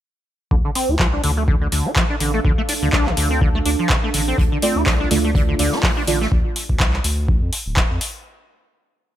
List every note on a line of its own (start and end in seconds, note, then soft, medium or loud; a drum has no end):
0.51 0.62 D2 medium
0.51 0.56 D3 medium
0.51 6.32 D4 medium
0.51 kick loud
0.65 0.71 D3 medium
0.75 0.91 C4 medium
0.75 6.32 F5 medium
0.75 open hi-hat loud
0.89 0.97 D2 medium
0.89 0.95 F4 medium
0.96 1.19 C2 medium
0.96 1.07 F3 loud
0.96 6.32 A4 medium
0.96 kick loud
0.96 clap loud
1.13 1.22 D4 medium
1.24 1.68 D2 medium
1.24 1.31 D3 loud
1.24 open hi-hat loud
1.37 1.43 A3 medium
1.48 1.55 D3 loud
1.48 kick loud
1.61 1.67 D3 medium
1.68 6.32 A5 medium
1.72 1.83 D2 loud
1.72 1.87 D3 medium
1.72 open hi-hat loud
1.86 1.92 F4 medium
1.96 2.04 F3 loud
1.96 kick loud
1.96 clap loud
2.10 2.16 D4 medium
2.20 2.40 A1 medium
2.20 2.32 D3 medium
2.20 open hi-hat loud
2.34 2.40 A3 medium
2.45 2.55 D2 medium
2.45 2.52 D3 loud
2.45 kick loud
2.58 2.62 A3 loud
2.69 2.73 D4 medium
2.69 open hi-hat loud
2.82 2.91 D2 medium
2.82 2.88 D3 loud
2.93 3.13 C2 medium
2.93 3.08 D4 loud
2.93 kick loud
2.93 clap loud
3.06 3.15 D3 medium
3.06 clap soft
3.17 3.62 D2 medium
3.17 3.28 D3 medium
3.17 open hi-hat loud
3.31 3.40 C4 medium
3.41 3.49 D3 loud
3.41 kick loud
3.55 3.59 A3 loud
3.66 3.76 D2 loud
3.66 3.70 D4 medium
3.66 open hi-hat loud
3.79 3.92 F3 medium
3.89 3.97 C3 medium
3.89 kick loud
3.89 clap loud
4.04 4.09 A3 medium
4.14 4.33 A1 medium
4.14 4.22 D3 medium
4.14 open hi-hat loud
4.28 4.37 C4 medium
4.38 4.49 D2 loud
4.38 4.43 D3 medium
4.38 6.30 A3 medium
4.38 6.30 D4 medium
4.38 6.30 F4 medium
4.38 6.30 D5 medium
4.38 kick loud
4.38 closed hi-hat medium
4.52 4.58 D3 medium
4.62 4.74 A3 loud
4.62 4.78 C4 medium
4.62 4.74 F4 medium
4.62 4.74 D5 loud
4.62 closed hi-hat medium
4.62 open hi-hat loud
4.76 4.84 D2 medium
4.76 4.82 F4 medium
4.86 5.06 C2 medium
4.86 4.94 F3 loud
4.86 kick loud
4.86 snare loud
4.86 clap loud
4.86 closed hi-hat medium
5.00 5.09 D4 medium
5.11 5.55 D2 medium
5.11 5.18 D3 loud
5.11 5.23 A3 medium
5.11 5.23 F4 medium
5.11 5.23 D5 loud
5.11 closed hi-hat medium
5.11 open hi-hat loud
5.24 5.30 A3 medium
5.35 5.42 D3 loud
5.35 kick loud
5.35 closed hi-hat medium
5.49 5.55 D3 medium
5.59 5.70 D2 loud
5.59 5.74 D3 medium
5.59 5.71 A3 medium
5.59 5.71 F4 medium
5.59 5.71 D5 loud
5.59 closed hi-hat medium
5.59 open hi-hat loud
5.72 5.79 F4 medium
5.72 snare soft
5.83 5.91 F3 loud
5.83 kick loud
5.83 snare loud
5.83 clap loud
5.83 open hi-hat medium
5.97 6.03 D4 medium
6.07 6.27 A1 medium
6.07 6.19 D3 medium
6.07 6.19 A3 medium
6.07 6.19 F4 medium
6.07 6.19 D5 medium
6.07 closed hi-hat medium
6.07 open hi-hat loud
6.21 6.27 A3 medium
6.21 snare soft
6.32 6.42 D2 medium
6.32 kick loud
6.56 open hi-hat loud
6.69 6.78 D2 medium
6.69 kick medium
6.80 7.00 C2 medium
6.80 kick loud
6.80 clap loud
6.93 clap soft
7.04 7.41 D2 medium
7.04 open hi-hat loud
7.28 kick loud
7.42 7.50 F2 medium
7.53 open hi-hat loud
7.66 7.84 D1 loud
7.77 kick loud
7.77 clap loud
7.91 7.99 F2 medium
8.01 open hi-hat loud